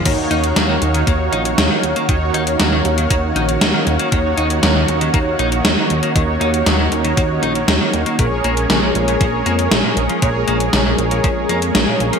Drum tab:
CC |x---------------|----------------|----------------|----------------|
HH |x-xxx-xxx-xxx-xx|x-xxx-xxx-xxx-xx|x-xxx-xxx-xxx-xx|x-xxx-xxx-xxx-xx|
SD |----o-------o---|----o-------o---|----o-------o---|----o-------o---|
BD |o-------o-------|o-------o-------|o-------o-------|o-------o-------|

CC |----------------|----------------|
HH |x-xxx-xxx-xxx-xx|x-xxx-xxx-xxx-xx|
SD |----o-------o---|----o-------o---|
BD |o-------o-------|o-------o-------|